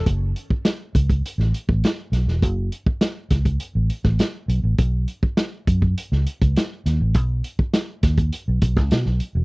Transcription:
<<
  \new Staff \with { instrumentName = "Fingered electric bass" } { \clef bass \time 4/4 \key fis \dorian \tempo 4 = 102 fis,,8 r4 cis,8 r16 a,,16 r16 a,,16 r8 b,,16 e,,16 | fis,,8 r4 cis,8 r16 a,,16 r16 a,,16 r8 b,,16 a,,16 | b,,8 r4 fis,8 r16 cis,16 r16 cis,16 r8 dis,16 a,,16 | b,,8 r4 dis,8 r16 b,,16 b,,16 cis,16 b,16 b,,16 r16 e,,16 | }
  \new DrumStaff \with { instrumentName = "Drums" } \drummode { \time 4/4 <hh bd>8 hh16 bd16 <hh sn>8 <hh bd>16 <hh bd>16 hh16 sn16 hh16 bd16 <hh sn>8 <hh sn>16 sn16 | <hh bd>8 hh16 bd16 <hh sn>8 <hh bd sn>16 <hh bd>16 hh8 hh16 <bd sn>16 <hh sn>8 hh8 | <hh bd>8 hh16 bd16 <hh sn>8 <hh bd>16 bd16 hh16 sn16 hh16 <hh bd>16 <hh sn>8 <hh sn>8 | <hh bd>8 hh16 bd16 <hh sn>8 <hh bd sn>16 <hh bd>16 hh8 <hh bd>16 <bd sn>16 <hh sn>16 sn16 hh8 | }
>>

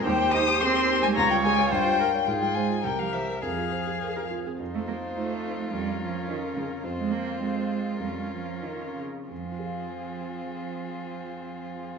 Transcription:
<<
  \new Staff \with { instrumentName = "Violin" } { \time 2/4 \key f \minor \tempo 4 = 104 g''8 ees'''8 c'''8. aes''16 | bes''16 g''16 aes''8 g''4 | r16 g''16 aes''8 g''16 f''16 e''8 | f''4. r8 |
c''2 | bes'2 | c''2 | bes'4. r8 |
aes'2~ | aes'2 | }
  \new Staff \with { instrumentName = "Viola" } { \time 2/4 \key f \minor c''2 | des''4 c''8 bes'8 | aes'4 g'4 | aes'4 aes'16 bes'8 aes'16 |
ees'2 | des'2 | c'2 | des'4. r8 |
c'2~ | c'2 | }
  \new Staff \with { instrumentName = "Grand piano" } { \time 2/4 \key f \minor ees,16 g'16 c''16 g'16 aes'16 c''16 g'16 g16 | des,16 f'16 aes'16 des''16 g,16 f'16 bes'16 des''16 | aes,16 f'16 c''16 f'16 c,16 g'16 c''16 bes'16 | f,16 f'16 c''16 aes'16 bes'16 aes'16 f'16 c'16 |
f,4 <ees' f' c''>4 | f,4 <des' f' bes'>4 | f,4 <c' f' c''>4 | f,4 <des' f' bes'>4 |
<f, f c' f' aes' f''>2~ | <f, f c' f' aes' f''>2 | }
  \new Staff \with { instrumentName = "Violin" } { \time 2/4 \key f \minor g'2 | f'2 | f'4 bes'4 | aes'4. r8 |
f'2~ | f'2 | f'2~ | f'4. r8 |
f'2~ | f'2 | }
  \new Staff \with { instrumentName = "Cello" } { \clef bass \time 2/4 \key f \minor g8 ees'8 c'8. aes16 | bes16 g16 aes8 g4 | r16 g16 aes8 g16 f16 e8 | f4. r8 |
r16 a16 bes8 a4 | g8 f8 ees8 des8 | r16 aes16 bes8 aes4 | g8 f8 ees8 des8 |
f2~ | f2 | }
>>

